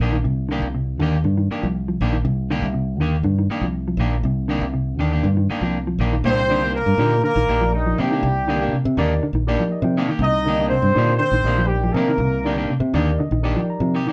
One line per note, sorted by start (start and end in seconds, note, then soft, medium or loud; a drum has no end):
0.00 0.22 A#1 medium
0.00 0.16 D#3 medium
0.00 0.16 A#3 medium
0.00 0.16 D4 medium
0.00 0.17 G4 medium
0.13 0.22 D#3 medium
0.24 0.59 C2 medium
0.24 0.43 C3 medium
0.49 0.67 D3 medium
0.49 0.66 D#3 medium
0.49 0.66 A#3 medium
0.49 0.66 D4 medium
0.49 0.66 G4 medium
0.62 1.00 C2 medium
0.74 0.93 C3 medium
0.99 1.22 D#2 medium
0.99 1.18 D3 medium
0.99 1.16 D#3 medium
0.99 1.16 A#3 medium
0.99 1.16 D4 medium
0.99 1.16 G4 medium
1.24 1.47 G2 medium
1.24 1.34 D3 medium
1.38 1.56 D#3 medium
1.49 1.66 D#3 medium
1.49 1.66 A#3 medium
1.49 1.66 D4 medium
1.49 1.66 G4 medium
1.49 muted fingered electric bass stroke soft
1.63 1.96 C2 medium
1.63 1.81 F3 medium
1.88 2.06 F3 medium
2.01 2.22 A#1 medium
2.01 2.16 D#3 medium
2.01 2.16 A#3 medium
2.01 2.16 D4 medium
2.01 2.16 G4 medium
2.13 2.21 D#3 medium
2.25 2.58 C2 medium
2.25 2.43 C3 medium
2.50 2.68 D3 medium
2.50 2.65 D#3 medium
2.50 2.65 A#3 medium
2.50 2.66 D4 medium
2.50 2.66 G4 medium
2.62 2.99 C2 medium
2.74 2.92 C3 medium
2.99 3.21 D#2 medium
2.99 3.18 D3 medium
2.99 3.15 D#3 medium
2.99 3.16 A#3 medium
2.99 3.16 G4 medium
3.23 3.46 G2 medium
3.23 3.34 D3 medium
3.39 3.56 D#3 medium
3.48 3.65 D#3 medium
3.48 3.65 A#3 medium
3.48 3.65 D4 medium
3.48 3.66 G4 medium
3.48 muted fingered electric bass stroke soft
3.61 3.95 C2 medium
3.61 3.81 F3 medium
3.88 4.05 F3 medium
3.97 4.20 A#1 medium
3.97 4.15 D#3 medium
3.97 4.15 A#3 medium
3.97 4.15 D4 medium
3.97 4.15 G4 medium
4.23 4.57 C2 medium
4.23 4.43 C3 medium
4.48 4.66 D3 medium
4.48 4.64 D#3 medium
4.48 4.65 A#3 medium
4.48 4.65 D4 medium
4.48 4.65 G4 medium
4.61 4.99 C2 medium
4.74 4.92 C3 medium
4.99 5.21 D#2 medium
4.99 5.17 D3 medium
4.99 5.12 D#3 medium
4.99 5.12 D4 medium
4.99 5.12 G4 medium
4.99 muted clean electric guitar stroke medium
5.13 5.27 A#3 soft
5.13 5.27 D4 soft
5.13 5.27 G4 medium
5.23 5.46 G2 medium
5.23 5.33 D3 medium
5.37 5.55 D#3 medium
5.50 5.62 D#3 medium
5.50 5.62 A#3 medium
5.50 5.62 D4 medium
5.50 5.62 G4 medium
5.50 muted fingered electric bass stroke soft
5.61 5.94 C2 medium
5.61 5.80 F3 medium
5.61 5.78 A#3 soft
5.61 5.77 D4 medium
5.61 5.77 G4 soft
5.87 6.05 F3 medium
5.99 6.21 A#1 medium
5.99 6.14 D#3 medium
5.99 6.14 A#3 medium
5.99 6.15 D4 medium
5.99 6.15 G4 medium
6.13 6.21 D#3 medium
6.24 6.79 C2 loud
6.24 6.42 A#2 medium
6.24 6.39 A#3 medium
6.24 6.40 D4 medium
6.24 6.40 G4 medium
6.24 6.71 C5 loud
6.24 muted clean electric guitar stroke medium
6.28 6.72 C4 medium
6.48 6.68 D3 medium
6.48 6.62 D#3 medium
6.48 6.62 A#3 medium
6.48 6.62 D4 medium
6.48 6.74 D#4 medium
6.48 6.74 G4 medium
6.48 6.75 A#4 medium
6.48 6.74 D5 medium
6.52 6.63 G4 medium
6.64 6.77 A#3 soft
6.64 6.77 D4 soft
6.64 6.77 G4 soft
6.75 7.22 A#3 medium
6.75 7.20 A#4 loud
6.86 6.97 G2 medium
6.98 7.20 A#2 medium
6.98 7.17 D3 medium
6.98 7.13 D#3 medium
6.98 7.14 A#3 medium
6.98 7.14 D4 medium
6.98 7.24 D#4 medium
6.98 7.24 G4 medium
6.98 7.14 G4 medium
6.98 7.24 A#4 medium
6.98 7.24 C5 medium
7.24 7.32 D3 medium
7.24 7.76 A#3 medium
7.24 7.70 A#4 loud
7.36 7.46 A#1 medium
7.36 7.54 D#3 medium
7.48 7.92 A#1 medium
7.48 7.63 D#3 medium
7.48 7.63 A#3 medium
7.48 7.64 D4 medium
7.48 8.00 D#4 medium
7.48 8.00 G4 medium
7.48 7.64 G4 medium
7.48 8.00 A#4 medium
7.48 8.00 D5 medium
7.61 7.79 F3 medium
7.74 8.03 D#3 medium
7.74 7.98 D#4 medium
7.86 8.04 F3 medium
7.98 8.20 C3 medium
7.98 8.11 D#3 medium
7.98 8.74 G3 medium
7.98 8.11 A#3 medium
7.98 8.11 D4 medium
7.98 8.73 G4 medium
7.98 8.11 G4 medium
8.11 8.20 D#3 medium
8.11 8.26 A#3 soft
8.11 8.26 D4 soft
8.11 8.26 G4 soft
8.23 8.67 C2 loud
8.23 8.40 C3 medium
8.47 8.66 D3 medium
8.47 8.61 D#3 medium
8.47 8.61 A#3 medium
8.47 8.61 D4 medium
8.47 8.73 D#4 medium
8.47 8.73 G4 medium
8.47 8.60 G4 medium
8.47 8.74 A#4 medium
8.47 8.74 D5 medium
8.61 8.76 A#3 soft
8.61 8.75 D4 soft
8.61 8.75 G4 medium
8.73 8.90 C3 medium
8.73 muted fingered electric bass stroke soft
8.85 8.96 C3 loud
8.97 9.19 D#2 medium
8.97 9.15 D3 medium
8.97 9.12 D#3 medium
8.97 9.13 A#3 medium
8.97 9.13 D4 medium
8.97 9.23 D#4 loud
8.97 9.23 G4 medium
8.97 9.13 G4 medium
8.97 9.24 A#4 loud
8.97 9.24 D5 loud
9.23 9.32 D3 medium
9.33 9.56 A#1 medium
9.33 9.53 D#3 medium
9.47 9.63 A#3 medium
9.47 9.63 D4 medium
9.47 9.99 D#4 medium
9.47 9.99 G4 medium
9.47 9.63 G4 medium
9.47 9.99 A#4 medium
9.47 9.99 D5 medium
9.60 9.78 F3 medium
9.72 9.83 D#5 medium
9.82 10.05 C3 medium
9.82 10.02 F3 medium
9.82 10.18 G5 medium
9.97 10.09 D#3 medium
9.97 10.10 A#3 medium
9.97 10.10 D4 medium
9.97 10.09 G4 medium
10.09 10.18 D#3 medium
10.09 10.25 A#3 soft
10.09 10.24 G4 soft
10.09 muted clean electric guitar stroke soft
10.19 10.75 C2 loud
10.19 10.39 C3 loud
10.19 10.68 D#4 loud
10.19 10.68 D#5 loud
10.44 10.64 D3 medium
10.44 10.71 D#4 medium
10.44 10.71 G4 medium
10.44 10.71 A#4 medium
10.44 10.71 D#5 medium
10.48 10.60 D#3 medium
10.48 10.60 A#3 medium
10.48 10.60 D4 medium
10.48 10.59 G4 medium
10.60 10.75 A#3 soft
10.60 10.74 D4 soft
10.60 10.74 G4 soft
10.68 10.89 C3 medium
10.68 11.17 C4 medium
10.68 11.16 C5 medium
10.82 10.93 G2 medium
10.95 11.18 A#2 medium
10.95 11.13 D3 medium
10.95 11.11 D#3 medium
10.95 11.12 A#3 medium
10.95 11.12 D4 medium
10.95 11.21 D#4 medium
10.95 11.21 G4 medium
10.95 11.21 A#4 medium
10.95 11.22 D5 medium
10.99 11.12 G4 medium
11.17 11.29 D3 medium
11.17 11.68 C4 medium
11.17 11.65 C5 loud
11.31 11.43 A#1 medium
11.31 11.51 D#3 medium
11.44 11.89 A#1 medium
11.44 11.61 D#3 medium
11.44 11.61 A#3 medium
11.44 11.61 D4 medium
11.44 11.97 D#4 medium
11.44 11.97 G4 medium
11.44 11.61 G4 medium
11.44 11.97 A#4 medium
11.44 11.97 D5 medium
11.58 11.76 F3 medium
11.67 11.93 G3 medium
11.67 11.93 G4 medium
11.84 12.01 F3 medium
11.92 12.17 C3 medium
11.92 12.68 A#3 medium
11.92 12.69 A#4 medium
11.96 12.11 D#3 medium
11.96 12.11 A#3 medium
11.96 12.11 D4 medium
11.96 12.11 G4 medium
12.09 12.17 D#3 medium
12.18 12.63 C2 loud
12.18 12.38 C3 medium
12.43 12.63 D3 medium
12.43 12.58 D#3 medium
12.43 12.57 A#3 medium
12.43 12.57 D4 medium
12.43 12.70 D#4 medium
12.43 12.70 G4 medium
12.43 12.56 G4 medium
12.43 12.71 A#4 medium
12.43 12.71 D5 medium
12.57 12.73 A#3 soft
12.57 12.72 D4 medium
12.57 12.72 G4 soft
12.68 12.88 C3 medium
12.68 muted fingered electric bass stroke soft
12.80 12.92 C3 loud
12.94 13.16 D#2 medium
12.94 13.13 D3 medium
12.94 13.09 D#3 medium
12.94 13.10 A#3 medium
12.94 13.10 D4 medium
12.94 13.20 D#4 medium
12.94 13.20 G4 medium
12.94 13.10 G4 medium
12.94 13.20 A#4 medium
12.94 13.17 C5 medium
12.94 13.20 D5 loud
13.18 13.29 D3 medium
13.18 13.54 D#5 medium
13.31 13.54 A#1 medium
13.31 13.50 D#3 medium
13.43 13.59 D#3 medium
13.43 13.60 D4 medium
13.43 13.96 D#4 medium
13.43 13.96 G4 medium
13.43 13.60 G4 medium
13.43 13.96 A#4 medium
13.43 13.96 D5 medium
13.56 13.75 F3 medium
13.56 13.68 G5 medium
13.70 14.13 A#5 medium
13.80 14.03 C3 medium
13.80 14.00 F3 medium
13.95 14.07 D#3 medium
13.95 14.07 G4 medium
13.95 muted clean electric guitar stroke medium
14.07 14.13 D#3 medium
14.07 14.13 A#3 soft
14.07 14.13 D4 soft
14.07 14.13 G4 soft